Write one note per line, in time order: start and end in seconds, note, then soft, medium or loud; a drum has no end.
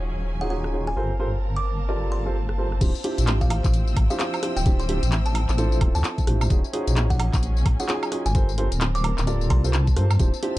0.00 0.95 D#1 medium
0.00 0.96 F#3 medium
0.00 0.38 C#4 medium
0.00 0.96 C#4 medium
0.00 0.38 D#4 medium
0.00 0.38 F4 medium
0.00 0.38 F#4 medium
0.00 0.38 G#4 loud
0.00 0.94 C#5 medium
0.00 2.77 F5 medium
0.00 0.95 G#5 medium
0.00 0.96 G#5 medium
0.41 0.49 C#4 medium
0.41 0.49 D#4 medium
0.41 0.49 F4 medium
0.41 0.49 F#4 medium
0.41 0.49 G#4 medium
0.41 0.47 F#5 medium
0.50 0.71 C#4 medium
0.50 0.71 D#4 medium
0.50 0.71 F4 medium
0.50 0.71 F#4 medium
0.50 0.71 G#4 medium
0.50 0.59 F#5 medium
0.64 cross-stick soft
0.73 0.87 C#4 medium
0.73 0.87 D#4 medium
0.73 0.87 F4 medium
0.73 0.87 F#4 medium
0.73 0.87 G#4 medium
0.87 1.02 G#5 medium
0.87 cross-stick soft
0.96 2.79 G1 medium
0.96 2.79 A#3 medium
0.96 6.50 C4 medium
0.96 1.10 F4 medium
0.96 1.10 G4 medium
0.96 1.10 A4 medium
0.96 1.10 A#4 medium
0.96 2.79 C5 medium
0.96 1.10 C5 medium
0.96 2.79 A5 medium
1.03 2.81 A#4 medium
1.20 1.28 F4 medium
1.20 1.28 G4 medium
1.20 1.28 A4 medium
1.20 1.28 A#4 medium
1.20 1.28 C5 loud
1.30 3.48 A5 medium
1.56 1.65 D6 medium
1.89 2.23 F4 medium
1.89 2.23 G4 medium
1.89 2.23 A4 medium
1.89 2.23 A#4 medium
1.89 2.23 D5 medium
2.12 2.77 C6 medium
2.26 2.34 F4 medium
2.26 2.34 G4 medium
2.26 2.34 A4 medium
2.26 2.34 A#4 medium
2.26 2.34 C5 medium
2.49 cross-stick medium
2.58 2.66 F4 medium
2.58 2.66 G4 medium
2.58 2.66 A4 medium
2.58 2.66 A#4 medium
2.58 2.66 C5 medium
2.72 cross-stick soft
2.81 2.93 D1 loud
2.81 2.89 C4 medium
2.81 2.89 D4 medium
2.81 2.89 E4 medium
2.81 2.89 F4 medium
2.81 2.89 G4 medium
2.81 6.47 C5 medium
2.81 6.47 E5 medium
2.81 6.47 G5 medium
2.81 kick loud
2.81 closed hi-hat medium
2.81 crash loud
2.81 tambourine medium
2.95 tambourine soft
3.04 6.50 F3 medium
3.04 4.07 C4 medium
3.04 4.07 D4 medium
3.04 4.07 E4 medium
3.04 4.07 F4 medium
3.04 4.07 G4 loud
3.04 open hi-hat loud
3.12 6.51 G5 medium
3.18 3.62 A1 medium
3.18 6.51 E6 medium
3.18 closed hi-hat medium
3.18 tambourine medium
3.27 clap loud
3.27 closed hi-hat medium
3.27 tambourine medium
3.41 3.47 F5 medium
3.41 kick medium
3.41 closed hi-hat soft
3.41 tambourine soft
3.50 3.59 F5 medium
3.50 cross-stick soft
3.50 open hi-hat loud
3.50 high woodblock medium
3.64 3.95 A1 medium
3.64 kick loud
3.64 clap medium
3.64 tambourine medium
3.74 closed hi-hat medium
3.74 tambourine medium
3.87 tambourine soft
3.96 4.09 A1 loud
3.96 kick loud
3.96 open hi-hat loud
3.96 high woodblock medium
4.10 4.18 C4 medium
4.10 4.18 D4 medium
4.10 4.18 E4 medium
4.10 4.18 F4 medium
4.10 4.18 G4 medium
4.10 4.16 F5 medium
4.10 tambourine medium
4.19 4.40 C4 medium
4.19 4.40 D4 medium
4.19 4.40 E4 medium
4.19 4.40 F4 medium
4.19 4.40 G4 loud
4.19 4.28 F5 medium
4.19 clap loud
4.19 closed hi-hat medium
4.19 tambourine soft
4.34 closed hi-hat soft
4.34 tambourine soft
4.34 high woodblock medium
4.43 4.56 C4 medium
4.43 4.56 D4 medium
4.43 4.56 E4 medium
4.43 4.56 F4 medium
4.43 4.56 G4 medium
4.43 cross-stick medium
4.43 open hi-hat loud
4.57 5.00 D1 medium
4.57 4.77 G5 medium
4.57 tambourine medium
4.66 4.79 C4 medium
4.66 4.79 D4 medium
4.66 4.79 E4 medium
4.66 4.79 F4 medium
4.66 4.79 G4 loud
4.66 kick loud
4.66 closed hi-hat medium
4.66 tambourine soft
4.80 4.88 C6 medium
4.80 tambourine soft
4.89 4.97 C4 medium
4.89 4.97 D4 medium
4.89 4.97 E4 medium
4.89 4.97 F4 medium
4.89 4.97 G4 loud
4.89 open hi-hat loud
5.03 5.46 A1 medium
5.03 closed hi-hat medium
5.03 tambourine medium
5.12 clap loud
5.12 closed hi-hat medium
5.12 tambourine medium
5.26 5.34 A5 medium
5.26 closed hi-hat soft
5.26 tambourine soft
5.35 open hi-hat loud
5.35 high woodblock medium
5.49 5.83 A1 medium
5.49 clap medium
5.49 tambourine medium
5.58 6.25 C4 medium
5.58 6.25 D4 medium
5.58 6.25 E4 medium
5.58 6.25 F4 medium
5.58 6.25 A4 loud
5.58 closed hi-hat medium
5.58 tambourine soft
5.72 tambourine soft
5.81 5.93 D1 loud
5.81 kick loud
5.81 open hi-hat loud
5.81 high woodblock medium
5.95 6.03 D2 medium
5.95 6.41 A5 medium
5.95 tambourine medium
6.04 clap loud
6.04 closed hi-hat medium
6.04 tambourine medium
6.18 kick medium
6.18 closed hi-hat soft
6.18 tambourine soft
6.27 6.48 A1 loud
6.27 6.48 C4 medium
6.27 6.48 D4 medium
6.27 6.48 E4 medium
6.27 6.48 F4 medium
6.27 6.48 G4 medium
6.27 cross-stick medium
6.27 open hi-hat loud
6.41 tambourine medium
6.41 high woodblock medium
6.50 6.63 D#1 loud
6.50 6.58 C#4 medium
6.50 8.35 C#4 medium
6.50 6.59 D#4 medium
6.50 6.58 F4 medium
6.50 6.58 F#4 medium
6.50 6.58 G#4 medium
6.50 8.33 C#5 medium
6.50 8.33 G#5 medium
6.50 kick loud
6.50 closed hi-hat medium
6.50 tambourine medium
6.64 tambourine soft
6.73 8.35 F#3 medium
6.73 7.76 C#4 medium
6.73 7.76 D#4 medium
6.73 7.76 F4 medium
6.73 7.76 F#4 medium
6.73 7.76 G#4 loud
6.73 open hi-hat loud
6.87 7.31 A#1 medium
6.87 closed hi-hat medium
6.87 tambourine medium
6.97 clap loud
6.97 closed hi-hat medium
6.97 tambourine medium
7.10 7.16 F#5 medium
7.10 kick medium
7.10 closed hi-hat soft
7.10 tambourine soft
7.19 7.28 F#5 medium
7.19 cross-stick soft
7.19 open hi-hat loud
7.19 high woodblock medium
7.33 7.64 A#1 medium
7.33 8.35 G#5 medium
7.33 kick loud
7.33 clap medium
7.33 tambourine medium
7.43 closed hi-hat medium
7.43 tambourine medium
7.57 tambourine soft
7.66 7.78 A#1 loud
7.66 kick loud
7.66 open hi-hat loud
7.66 high woodblock medium
7.80 7.87 C#4 medium
7.80 7.87 D#4 medium
7.80 7.87 F4 medium
7.80 7.87 F#4 medium
7.80 7.87 G#4 medium
7.80 7.86 F#5 medium
7.80 tambourine medium
7.89 8.10 C#4 medium
7.89 8.10 D#4 medium
7.89 8.10 F4 medium
7.89 8.10 F#4 medium
7.89 8.10 G#4 loud
7.89 7.98 F#5 medium
7.89 clap loud
7.89 closed hi-hat medium
7.89 tambourine medium
8.03 closed hi-hat soft
8.03 tambourine soft
8.03 high woodblock medium
8.12 8.25 C#4 medium
8.12 8.25 D#4 medium
8.12 8.25 F4 medium
8.12 8.25 F#4 medium
8.12 8.25 G#4 medium
8.12 cross-stick medium
8.12 open hi-hat loud
8.26 8.69 G1 medium
8.26 8.41 G#5 medium
8.26 tambourine medium
8.35 10.18 A#3 medium
8.35 10.59 C4 medium
8.35 8.48 F4 medium
8.35 8.48 G4 medium
8.35 8.48 A4 medium
8.35 8.48 A#4 medium
8.35 10.59 C5 medium
8.35 8.48 C5 loud
8.35 10.18 A5 medium
8.35 kick loud
8.35 closed hi-hat medium
8.35 tambourine medium
8.47 10.20 A#4 medium
8.47 tambourine soft
8.58 8.66 F4 medium
8.58 8.66 G4 medium
8.58 8.66 A4 medium
8.58 8.66 A#4 medium
8.58 8.66 C5 loud
8.58 open hi-hat loud
8.72 9.15 D1 medium
8.72 closed hi-hat medium
8.72 tambourine medium
8.81 clap loud
8.81 closed hi-hat medium
8.81 tambourine medium
8.95 9.04 D6 medium
8.95 closed hi-hat soft
8.95 tambourine soft
9.03 10.59 A5 medium
9.03 open hi-hat loud
9.03 high woodblock medium
9.18 9.52 D1 medium
9.18 clap medium
9.18 tambourine medium
9.27 9.62 F4 medium
9.27 9.62 G4 medium
9.27 9.62 A4 medium
9.27 9.61 A#4 medium
9.27 9.62 D5 loud
9.27 closed hi-hat medium
9.27 tambourine medium
9.41 tambourine soft
9.50 9.98 C2 medium
9.50 10.16 C6 medium
9.50 kick loud
9.50 open hi-hat loud
9.50 high woodblock medium
9.64 9.73 F4 medium
9.64 9.73 G4 medium
9.64 9.73 A4 medium
9.64 9.73 A#4 medium
9.64 9.73 C5 loud
9.64 tambourine medium
9.73 clap loud
9.73 closed hi-hat medium
9.73 tambourine medium
9.87 kick medium
9.87 closed hi-hat soft
9.87 tambourine soft
9.96 10.17 G2 medium
9.96 10.05 F4 medium
9.96 10.05 G4 medium
9.96 10.05 A4 medium
9.96 10.05 A#4 medium
9.96 10.05 C5 medium
9.96 cross-stick medium
9.96 open hi-hat loud
10.11 tambourine medium
10.11 high woodblock medium
10.19 10.32 D1 loud
10.19 10.28 C4 medium
10.19 10.28 D4 medium
10.19 10.28 E4 medium
10.19 10.28 F4 medium
10.19 10.28 G4 medium
10.19 10.59 E5 medium
10.19 10.59 G5 medium
10.19 kick loud
10.19 closed hi-hat medium
10.19 tambourine medium
10.34 tambourine soft
10.43 10.59 F3 medium
10.43 10.59 C4 medium
10.43 10.59 D4 medium
10.43 10.59 E4 medium
10.43 10.59 F4 medium
10.43 10.59 G4 loud
10.43 10.59 E6 medium
10.43 open hi-hat loud